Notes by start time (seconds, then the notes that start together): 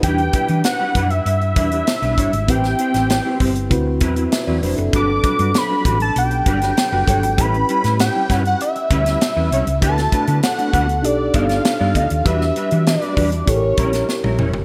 Already playing: D#4
0.03 E2 G3 D4 E4 G4 B4 G5, kick, closed hi-hat
0.18 closed hi-hat
0.33 G3 D4 E4 B4, kick, closed hi-hat
0.48 E3 G3 D4 E4 B4, closed hi-hat
0.64 F#5, muted clean electric guitar stroke, snare, closed hi-hat
0.80 G3 D4 E4 B4
0.95 F#2 G3 D4 E4 B4, kick, closed hi-hat
1.10 E5, muted clean electric guitar stroke, closed hi-hat
1.25 G2 E5, muted clean electric guitar stroke, closed hi-hat
1.41 muted clean electric guitar stroke, closed hi-hat
1.56 E2 G3 D4 E4 B4, kick, closed hi-hat
1.71 G3 D4 E4 B4, closed hi-hat
1.87 snare, closed hi-hat
2.02 B1 G3 D4 E4 B4, closed hi-hat
2.18 G1 G3 D4 E4 C#5, kick, closed hi-hat
2.33 G#1, muted clean electric guitar stroke, closed hi-hat
2.47 A1 C4 E4 G4 B4 C5 G5, kick, closed hi-hat
2.64 snare, closed hi-hat
2.79 C4 E4 G4 C5, closed hi-hat
2.94 A1 C4 E4 G4 C5, snare, closed hi-hat
3.10 muted clean electric guitar stroke, snare, closed hi-hat
3.25 C4 E4 G4 C5
3.40 G1 C4 E4 G4 C5, kick, open hi-hat
3.55 muted clean electric guitar stroke, closed hi-hat
3.70 D2 C4 E4 F#4 B4, muted clean electric guitar stroke, kick, closed hi-hat
3.86 muted clean electric guitar stroke
4.00 E2 F#3 C4 E4 B4, kick, closed hi-hat
4.16 F#3 C4 E4 B4, closed hi-hat
4.32 E5, snare, closed hi-hat
4.47 E2 F#3 C4 E4 F#4 B4 D5
4.62 F1 F#3 C4 D4 E4 B4 C5, open hi-hat
4.78 F#1 C4 A4, muted clean electric guitar stroke, closed hi-hat
4.92 G1 F#3 G3 D4 F#4 A4 B4 D6, kick, closed hi-hat
5.24 G3 D4 F#4 B4, kick, closed hi-hat
5.39 G2 G3 D4 F#4 B4, closed hi-hat
5.54 B5, muted clean electric guitar stroke, snare, closed hi-hat
5.69 G3 D4 F#4 B4
5.85 A1 G3 D4 F#4 B4, kick, closed hi-hat
6.00 A5, muted clean electric guitar stroke, closed hi-hat
6.16 B1 G5, muted clean electric guitar stroke, closed hi-hat
6.31 muted clean electric guitar stroke, closed hi-hat
6.46 G1 G3 D4 F#4 B4, kick, closed hi-hat
6.61 G3 D4 F#4 B4, snare, closed hi-hat
6.77 muted clean electric guitar stroke, snare, closed hi-hat
6.92 F#1 G3 D4 F#4 B4
7.06 G1 F#3 G3 D4 F#4 A4 B4 C#5, kick, closed hi-hat
7.23 G#1, muted clean electric guitar stroke, closed hi-hat
7.36 A1 G3 C#4 E4 G4 A4 B4, kick, closed hi-hat
7.41 B5
7.45 B4
7.54 closed hi-hat
7.69 G3 C#4 E4 B4, closed hi-hat
7.84 A2 G3 C#4 E4 B4, snare, closed hi-hat
7.99 G5, muted clean electric guitar stroke, snare, closed hi-hat
8.15 G3 C#4 E4 B4
8.29 G2 G3 C#4 E4 B4 F#5, kick, snare, closed hi-hat
8.45 F#5, muted clean electric guitar stroke, closed hi-hat
8.60 E5, muted clean electric guitar stroke, closed hi-hat
8.75 muted clean electric guitar stroke, closed hi-hat
8.90 D2 G3 C#4 E4 B4, kick, closed hi-hat
9.06 G3 C#4 E4 B4, snare, closed hi-hat
9.21 muted clean electric guitar stroke, snare, closed hi-hat
9.36 E2 G3 C#4 E4 B4
9.51 C2 G3 C#4 E4 C#5, closed hi-hat
9.67 C#2, muted clean electric guitar stroke, closed hi-hat
9.81 D2 A3 B3 D4 E4 F#4 G4 B4 A5, kick, closed hi-hat
9.90 A4
9.98 snare, closed hi-hat
10.12 A3 D4 F#4 B4, kick, closed hi-hat
10.27 D3 A3 D4 F#4 B4, closed hi-hat
10.43 F#5, muted clean electric guitar stroke, snare, closed hi-hat
10.58 A3 D4 F#4 B4, closed hi-hat
10.72 D2 A3 D4 F#4 B4, kick, closed hi-hat
10.88 muted clean electric guitar stroke, closed hi-hat
11.02 B1 D4 D#4 G4 A4 D5, muted clean electric guitar stroke, closed hi-hat
11.18 muted clean electric guitar stroke
11.33 G1 B3 D#4 A4 D5 F5, kick, closed hi-hat
11.49 B3 D#4 A4 D5, snare, closed hi-hat
11.65 snare, closed hi-hat
11.80 G2 B3 D#4 A4 D5
11.95 D2 B3 D#4 A4 D#5, kick, closed hi-hat
12.10 D#2, muted clean electric guitar stroke, closed hi-hat
12.24 E2 G3 D4 F#4 G4 B4 E5, kick, closed hi-hat
12.41 snare
12.56 G3 D4 F#4 B4, closed hi-hat
12.71 E3 G3 D4 F#4 B4, closed hi-hat
12.86 D5, muted clean electric guitar stroke, snare, closed hi-hat
13.01 G3 D4 F#4 B4, closed hi-hat
13.16 E2 G3 D4 F#4 B4, kick, open hi-hat
13.32 muted clean electric guitar stroke, closed hi-hat
13.46 A1 C#4 E4 G4 A4 C#5, muted clean electric guitar stroke, kick, closed hi-hat
13.54 A#4
13.62 muted clean electric guitar stroke
13.77 A#1 G3 C#4 E4 A#4, kick, closed hi-hat
13.93 G3 C#4 E4 A#4, snare, closed hi-hat
14.09 muted clean electric guitar stroke, snare
14.23 A#1 G3 C#4 E4 A#4, high tom
14.39 F1 G3 C#4 E4 C#5, mid tom
14.54 F#1, muted clean electric guitar stroke, floor tom